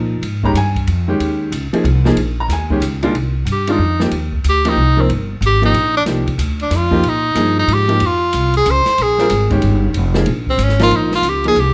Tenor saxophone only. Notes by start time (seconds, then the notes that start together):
3.52 G4
3.71 D#4
4.04 C4
4.49 G4
4.69 D#4
5.01 C4
5.46 G4
5.65 D#4
5.97 D4
6.62 D4
6.76 F4
7.09 D#4
7.59 D#4
7.73 G4
8.06 F4
8.57 G#4
8.71 C5
9.02 G#4
10.50 C4
10.64 C#4
10.83 F4
10.96 D#4
11.15 F4
11.29 G4
11.48 G#4
11.60 G4